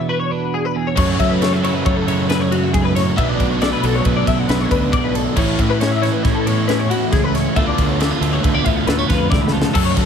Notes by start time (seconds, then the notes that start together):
Already playing: E2 B2 E3 B3 D4
0.09 F#4 B4
0.20 C#5
0.31 D4 B4
0.54 G#4
0.65 B4
0.75 E2 G#4
0.87 C#5
0.96 F#2 C#3 F#3 A3 C#5, kick, crash
1.00 C#4
1.20 F#3 E5, kick, ride
1.31 B4
1.41 A3 C#5, snare, ride
1.53 E5
1.63 F#3 E4 C#5, ride
1.75 B4
1.85 F#3 A3 C#5, kick, ride
1.96 A4
2.07 C#3 E4 C#5, ride
2.29 A3 B4, snare, ride
2.41 C#5
2.52 C#4 F#4, ride
2.63 E4
2.73 F#2 G#2 G#4, kick, ride
2.84 B4
2.95 A2 C#5, snare, ride
3.16 B1 B2 F#3 B3 D4 E5, kick, ride
3.29 D5
3.40 B1, kick, ride
3.51 C#5
3.62 A3 D5, snare, ride
3.73 B4
3.83 B1 F#3 D4 A4, ride
3.95 C#5
4.05 B1 A3 B4, kick, ride
4.16 D5
4.27 B1 F#2 D4 E5, kick, ride
4.38 F#5
4.48 B1 A3 B4, snare, ride
4.60 C#5
4.71 D2 D4 B4, kick, ride
4.92 B1 B2 D5, kick, ride
5.04 B4
5.15 A4, ride
5.36 A1 A2 E3 A3 C#4 E4 C#5, kick, crash
5.59 A2 E5, kick, ride
5.70 B4
5.80 C#4 C#5, snare, ride
5.91 E5
6.02 E3 E4 C#5, snare, ride
6.12 B4
6.23 A2 C#4 C#5, kick, snare, ride
6.35 A4
6.46 E2 E4 C#5, ride
6.68 C#4 B4, snare, ride
6.79 C#5
6.90 E4 F#4, ride
7.12 C#2 A2 G#4, kick, snare, ride
7.24 B4
7.34 C#5, snare, ride
7.55 D2 D3 A3 B3 D4 F4 A4 E5, kick, ride
7.67 D5
7.78 D2, kick, ride
7.89 C#5
8.00 A3 D5, snare, ride
8.11 B3 B4
8.21 D2 A3 F4 A4, ride
8.33 C#5
8.43 D2 A3 B4, kick, ride
8.54 B3 D5
8.65 D2 A2 F4 E5, kick, ride
8.76 F5
8.87 D2 A3 B4, snare, ride
8.98 B3 C#5
9.08 F2 F4 B4, kick, snare, ride
9.30 C#2 E3 D5, kick, snare
9.41 B4
9.48 snare
9.52 F3 A4
9.62 snare
9.73 F#2 C#3 F#3 A3 C#4 A4, kick, crash
9.85 C#5
9.97 F#3 A4, kick, snare, ride